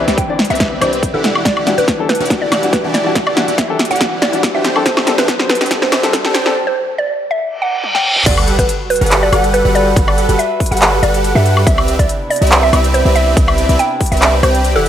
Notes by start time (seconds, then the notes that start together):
Already playing: C3 B3 D4 E4, riser
0.07 C2 C4 G4 B4 D5 E5, snare, closed hi-hat
0.18 G5, kick, closed hi-hat
0.28 E3 C4 D4 D5
0.39 snare, closed hi-hat
0.45 closed hi-hat
0.50 C2 C4 G4 B4 D5 E5, closed hi-hat
0.55 E3, closed hi-hat
0.60 C4 D4 B4, kick, snare, closed hi-hat
0.80 C2 E3 C4 D4 G4 B4 C5 D5 E5, closed hi-hat, high woodblock
0.93 closed hi-hat
1.03 kick, closed hi-hat
1.13 E1 E3 C4 D4 E4 G4 A4 B4 D5 F#5
1.24 E3 D4 F#4 G4, snare, closed hi-hat
1.35 high woodblock
1.45 E1 E3 E4 G4 D5 F#5, kick, snare, closed hi-hat
1.57 high woodblock
1.66 E3 G3 D4 F#4, snare, closed hi-hat
1.78 E1 E3 E4 G4 B4 D5 F#5, closed hi-hat
1.88 kick, snare, closed hi-hat
1.98 E3 G3 D4 A4
2.09 B4, snare, closed hi-hat
2.15 closed hi-hat
2.20 E1 E3 E4 G4 D5 F#5, closed hi-hat
2.26 E3, closed hi-hat
2.30 G3 D4 F#4, kick, snare, closed hi-hat
2.42 D5
2.52 E1 E3 E4 G4 D5 F#5, snare, closed hi-hat, high woodblock
2.62 E3 G3 D4 F#4, closed hi-hat
2.73 B4, kick, snare, closed hi-hat
2.83 E1 E3 G3 D4 E4 F#4 G4 D5 A5
2.94 D5, snare, closed hi-hat
3.04 E3 G3 D4 F#4
3.15 E1 G4 F#5, kick, snare, closed hi-hat
3.27 D5, high woodblock
3.36 E3 G3 D4 F#4, snare, closed hi-hat
3.48 E1 E3 E4 G4 D5 F#5, closed hi-hat
3.58 E5, kick, snare, closed hi-hat
3.68 E3 G3 D4 A4
3.79 snare, closed hi-hat
3.85 closed hi-hat
3.91 E1 E3 E4 G4 D5 F#5, closed hi-hat
3.96 E3, closed hi-hat
4.00 G3 D4 F#4, kick, snare, closed hi-hat
4.22 E1 E3 E4 G4 D5 F#5, snare, closed hi-hat
4.32 E3 G3 D4 F#4, closed hi-hat
4.43 kick, snare, closed hi-hat
4.53 D1 D3 E3 G3 D4 F#4 G4 C5 E5 G5
4.64 D3 C4, snare, closed hi-hat
4.75 G3 C4 D4 A4, high woodblock
4.86 D1 C5 E5, kick, snare, closed hi-hat
4.97 snare, high woodblock
5.06 G3 C4 D4 A4, snare, closed hi-hat
5.18 D1 D3 D4 G4 B4 C5 E5, snare, closed hi-hat
5.28 kick, snare, closed hi-hat
5.39 G3 C4 D4 C5, snare
5.49 B4, snare, closed hi-hat
5.55 closed hi-hat
5.61 D1 D3 D4 G4 C5 E5, snare, closed hi-hat
5.66 G3, closed hi-hat
5.70 C4 D4 A4, kick, snare, closed hi-hat
5.82 C5, snare
5.92 D1 D3 D4 G4 C5 E5, snare, closed hi-hat, high woodblock
6.02 G3 C4 D4 A4, snare, closed hi-hat
6.13 A4, kick, snare, closed hi-hat
6.24 D1 D3 G3 C4 D4 G4 A4 C5 G5, snare
6.34 C5, snare, closed hi-hat
6.45 G3 C4 D4 A4, snare
6.67 C5
6.98 D5
7.31 E5
7.41 reverse cymbal
7.62 F#5
7.84 high tom
7.95 G5, snare
8.16 mid tom
8.26 G1 G3 F#4 G4 A4 B4 D5 F#5, kick, closed hi-hat, crash, ride, sub drop
8.38 high woodblock
8.48 closed hi-hat
8.59 G1 G3 G4 B4 F#5, kick, closed hi-hat
8.69 closed hi-hat
8.90 B4, open hi-hat
8.96 closed hi-hat
9.01 G1 G3 G4 A4 B4 F#5, closed hi-hat
9.06 closed hi-hat
9.11 clap, closed hi-hat, ride
9.23 D5
9.32 G1 G3 G4 A4 B4 F#5, closed hi-hat, high woodblock
9.44 closed hi-hat
9.54 B4, closed hi-hat
9.65 G1 G3 G4 A4 B4 F#5
9.75 D5, closed hi-hat
9.96 G1 G3 G4 A4 B4 F#5, kick, closed hi-hat, ride
10.08 D5, high woodblock
10.18 closed hi-hat
10.29 G1 G3 G4 A4 B4 F#5, closed hi-hat
10.39 E5, closed hi-hat
10.60 kick, open hi-hat
10.66 closed hi-hat
10.71 G1 G3 G4 A4 B4 F#5, closed hi-hat
10.77 closed hi-hat
10.82 clap, closed hi-hat, ride
11.03 G1 G3 G4 A4 B4 D5 F#5, closed hi-hat
11.14 closed hi-hat
11.24 closed hi-hat
11.35 G2 G3 G4 A4 B4 E5 F#5
11.46 closed hi-hat
11.57 high woodblock
11.66 C2 C3 B3 C4 D4 E4 G4 B4 D5 E5, kick, closed hi-hat, ride
11.78 high woodblock
11.88 closed hi-hat
11.99 C2 C4 B4 D5 E5, kick, closed hi-hat
12.09 closed hi-hat
12.30 D5, open hi-hat
12.36 closed hi-hat
12.42 C2 C4 G4 B4 D5 E5, closed hi-hat
12.47 closed hi-hat
12.52 clap, closed hi-hat, ride
12.63 E5
12.73 C2 C4 G4 B4 D5 E5, closed hi-hat, high woodblock
12.84 closed hi-hat
12.94 C5, closed hi-hat
13.05 C2 C4 G4 B4 D5 E5
13.15 E5, closed hi-hat
13.37 C2 C4 G4 B4 D5 E5, kick, closed hi-hat, ride
13.48 E5, high woodblock
13.58 closed hi-hat
13.69 C2 C4 G4 B4 D5 E5, closed hi-hat
13.79 G5, closed hi-hat
14.01 kick, open hi-hat
14.06 closed hi-hat
14.12 C2 C4 G4 B4 D5 E5, closed hi-hat
14.17 closed hi-hat
14.22 clap, closed hi-hat, ride
14.43 C2 C4 G4 B4 C5 D5 G5, closed hi-hat, high woodblock
14.55 closed hi-hat
14.64 closed hi-hat
14.76 E1 E3 E4 G4 A4 D5 F#5